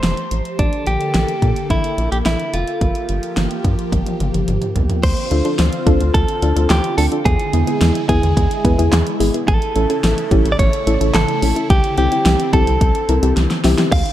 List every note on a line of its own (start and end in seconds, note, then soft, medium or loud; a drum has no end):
0.00 0.14 F1 loud
0.00 0.57 F3 medium
0.00 0.57 A3 medium
0.00 0.57 G4 medium
0.00 0.62 C5 loud
0.00 snare loud
0.00 closed hi-hat medium
0.17 closed hi-hat soft
0.31 0.42 A1 medium
0.31 closed hi-hat medium
0.45 closed hi-hat soft
0.59 0.70 A#1 loud
0.59 2.79 D3 medium
0.59 2.79 A#3 medium
0.59 0.85 D4 medium
0.59 2.79 A4 medium
0.59 kick loud
0.59 closed hi-hat medium
0.73 closed hi-hat soft
0.87 0.97 A#1 loud
0.87 1.70 G4 medium
0.87 closed hi-hat medium
1.01 closed hi-hat soft
1.14 1.25 A#1 loud
1.14 snare loud
1.14 closed hi-hat medium
1.28 closed hi-hat soft
1.42 1.53 A#2 medium
1.42 kick medium
1.42 closed hi-hat medium
1.56 closed hi-hat soft
1.70 1.81 A#1 loud
1.70 2.11 E4 medium
1.70 kick medium
1.70 closed hi-hat medium
1.84 closed hi-hat medium
1.98 2.08 A#1 medium
1.98 closed hi-hat medium
2.12 2.22 A#1 medium
2.12 2.17 G4 medium
2.12 closed hi-hat medium
2.26 2.36 A#1 loud
2.26 2.54 E4 medium
2.26 snare loud
2.26 closed hi-hat medium
2.40 closed hi-hat soft
2.54 2.64 F1 medium
2.54 4.44 F4 medium
2.54 closed hi-hat medium
2.68 closed hi-hat soft
2.81 2.92 G1 loud
2.81 5.01 F3 medium
2.81 5.01 A#3 medium
2.81 5.01 G4 medium
2.81 kick loud
2.81 closed hi-hat medium
2.95 closed hi-hat soft
3.09 3.20 G1 medium
3.09 closed hi-hat medium
3.23 closed hi-hat soft
3.37 3.47 G1 loud
3.37 snare loud
3.37 closed hi-hat medium
3.51 closed hi-hat medium
3.64 3.75 G2 loud
3.64 kick medium
3.64 closed hi-hat medium
3.79 closed hi-hat soft
3.92 4.03 G1 loud
3.92 kick medium
3.92 closed hi-hat medium
3.92 high tom medium
4.06 closed hi-hat medium
4.06 high tom medium
4.20 4.31 G1 loud
4.20 closed hi-hat medium
4.20 mid tom medium
4.34 4.45 G1 medium
4.34 closed hi-hat medium
4.34 mid tom medium
4.48 4.58 G1 loud
4.48 closed hi-hat medium
4.48 mid tom medium
4.62 closed hi-hat soft
4.62 mid tom medium
4.76 4.86 C2 medium
4.76 closed hi-hat medium
4.76 floor tom medium
4.90 closed hi-hat soft
4.90 floor tom medium
5.03 5.14 D2 loud
5.03 9.44 D3 medium
5.03 7.24 C4 medium
5.03 7.24 F4 medium
5.03 6.11 C5 loud
5.03 kick loud
5.03 closed hi-hat medium
5.03 crash loud
5.17 closed hi-hat medium
5.31 5.42 D2 loud
5.31 5.43 D4 medium
5.31 5.43 F4 medium
5.31 5.43 A4 medium
5.31 closed hi-hat medium
5.45 5.68 D4 medium
5.45 5.68 F4 medium
5.45 5.68 A4 medium
5.45 closed hi-hat medium
5.59 5.70 D2 loud
5.59 snare loud
5.59 closed hi-hat medium
5.73 closed hi-hat medium
5.87 5.97 D2 medium
5.87 6.10 D4 medium
5.87 6.10 F4 medium
5.87 6.10 A4 loud
5.87 kick loud
5.87 closed hi-hat medium
6.01 6.11 D2 loud
6.01 closed hi-hat medium
6.14 6.25 D2 loud
6.14 6.70 A4 loud
6.14 kick loud
6.14 closed hi-hat medium
6.29 closed hi-hat medium
6.42 6.53 D2 loud
6.42 6.54 D4 medium
6.42 6.54 F4 medium
6.42 6.54 A4 medium
6.42 closed hi-hat medium
6.56 6.67 D2 loud
6.56 6.80 D4 medium
6.56 6.80 F4 medium
6.56 6.80 A4 medium
6.56 closed hi-hat medium
6.70 6.81 D2 loud
6.70 6.96 G4 medium
6.70 snare loud
6.70 clap loud
6.70 closed hi-hat medium
6.84 closed hi-hat soft
6.98 7.08 D2 loud
6.98 7.10 D4 medium
6.98 7.10 F4 medium
6.98 7.05 A4 loud
6.98 7.10 A4 medium
6.98 open hi-hat medium
7.12 7.26 D4 medium
7.12 7.26 F4 medium
7.12 7.26 A4 medium
7.12 closed hi-hat medium
7.25 7.36 E2 loud
7.25 9.46 G#3 medium
7.25 9.46 E4 medium
7.25 8.05 G#4 loud
7.25 kick loud
7.25 closed hi-hat medium
7.40 closed hi-hat medium
7.53 7.64 E2 loud
7.53 7.65 B3 medium
7.53 7.65 E4 medium
7.53 7.65 G#4 medium
7.53 closed hi-hat medium
7.67 7.91 B3 medium
7.67 7.91 E4 medium
7.67 7.91 G#4 medium
7.67 closed hi-hat medium
7.81 7.92 E2 loud
7.81 snare loud
7.81 closed hi-hat medium
7.95 closed hi-hat medium
8.09 8.19 E2 medium
8.09 8.32 B3 medium
8.09 8.32 E4 medium
8.09 9.16 G#4 medium
8.09 8.32 G#4 medium
8.09 kick loud
8.09 closed hi-hat medium
8.23 8.33 E2 loud
8.23 closed hi-hat medium
8.37 8.47 E2 loud
8.37 kick medium
8.37 closed hi-hat medium
8.51 closed hi-hat medium
8.65 8.75 E2 loud
8.65 8.76 B3 medium
8.65 8.76 E4 medium
8.65 8.76 B4 medium
8.65 kick loud
8.65 closed hi-hat medium
8.78 8.89 E2 loud
8.78 9.02 B3 medium
8.78 9.02 E4 medium
8.78 9.02 G#4 loud
8.78 closed hi-hat medium
8.92 9.03 E2 loud
8.92 snare loud
8.92 clap loud
8.92 closed hi-hat medium
9.07 closed hi-hat soft
9.20 9.31 G#1 medium
9.20 9.32 B3 medium
9.20 9.32 E4 medium
9.20 9.32 G#4 loud
9.20 open hi-hat medium
9.34 9.48 B3 medium
9.34 9.48 E4 medium
9.34 9.48 G#4 medium
9.34 closed hi-hat medium
9.48 9.58 A1 loud
9.48 11.68 C#3 medium
9.48 11.68 A3 medium
9.48 13.88 E4 medium
9.48 10.52 A4 loud
9.48 kick loud
9.48 closed hi-hat medium
9.62 closed hi-hat soft
9.76 9.86 A1 loud
9.76 9.87 C#4 medium
9.76 9.87 E4 medium
9.76 9.87 A4 medium
9.76 closed hi-hat medium
9.90 10.13 C#4 medium
9.90 10.13 E4 medium
9.90 10.13 A4 medium
9.90 closed hi-hat medium
10.04 10.14 A1 loud
10.04 snare loud
10.04 closed hi-hat medium
10.18 closed hi-hat medium
10.31 10.42 A1 loud
10.31 10.55 C#4 medium
10.31 10.55 E4 medium
10.31 10.55 G4 loud
10.31 kick loud
10.31 closed hi-hat medium
10.45 10.56 A1 loud
10.45 closed hi-hat medium
10.52 10.59 D5 medium
10.59 10.70 A1 loud
10.59 11.14 C#5 loud
10.59 kick medium
10.59 closed hi-hat medium
10.73 closed hi-hat medium
10.87 10.97 A1 loud
10.87 10.99 C#4 medium
10.87 10.99 E4 medium
10.87 10.99 A4 medium
10.87 closed hi-hat medium
11.01 11.11 A1 loud
11.01 11.24 C#4 medium
11.01 11.24 E4 medium
11.01 11.24 A4 medium
11.01 closed hi-hat medium
11.14 11.25 A1 loud
11.14 11.70 A4 loud
11.14 snare loud
11.14 clap loud
11.14 closed hi-hat medium
11.28 closed hi-hat soft
11.42 11.53 A#1 medium
11.42 11.54 C#4 medium
11.42 11.54 E4 medium
11.42 11.54 A4 medium
11.42 open hi-hat medium
11.56 11.70 C#4 medium
11.56 11.70 E4 medium
11.56 11.70 A4 medium
11.56 closed hi-hat medium
11.70 11.81 C2 loud
11.70 14.13 D3 medium
11.70 13.90 C4 medium
11.70 11.97 G4 loud
11.70 kick loud
11.70 closed hi-hat medium
11.84 closed hi-hat medium
11.98 12.08 C2 loud
11.98 12.10 C4 medium
11.98 12.10 E4 medium
11.98 12.53 G4 medium
11.98 12.10 G4 medium
11.98 closed hi-hat medium
12.12 12.35 C4 medium
12.12 12.35 E4 medium
12.12 12.35 G4 medium
12.12 closed hi-hat medium
12.26 12.36 C2 loud
12.26 snare loud
12.26 closed hi-hat medium
12.40 closed hi-hat medium
12.53 12.64 C2 loud
12.53 12.77 C4 medium
12.53 12.77 E4 medium
12.53 12.77 G4 medium
12.53 13.33 A4 medium
12.53 kick loud
12.53 closed hi-hat medium
12.67 12.78 C2 loud
12.67 closed hi-hat medium
12.81 12.92 C2 loud
12.81 kick medium
12.81 closed hi-hat medium
12.95 closed hi-hat medium
13.09 13.19 C2 loud
13.09 13.21 C4 medium
13.09 13.21 E4 medium
13.09 13.21 A#4 medium
13.09 closed hi-hat medium
13.23 13.33 C2 loud
13.23 13.46 C4 medium
13.23 13.46 E4 medium
13.23 13.46 G4 medium
13.23 closed hi-hat medium
13.37 13.47 C2 loud
13.37 snare medium
13.37 closed hi-hat medium
13.51 snare medium
13.51 closed hi-hat soft
13.64 13.75 C2 loud
13.64 13.76 C4 medium
13.64 13.76 E4 medium
13.64 13.76 G4 loud
13.64 snare loud
13.64 open hi-hat medium
13.78 13.93 C4 medium
13.78 13.93 E4 medium
13.78 13.93 G4 medium
13.78 snare loud
13.78 closed hi-hat medium
13.92 14.03 D2 loud
13.92 14.13 C4 medium
13.92 14.13 F4 medium
13.92 14.13 F5 loud
13.92 kick loud
13.92 crash medium
14.06 closed hi-hat soft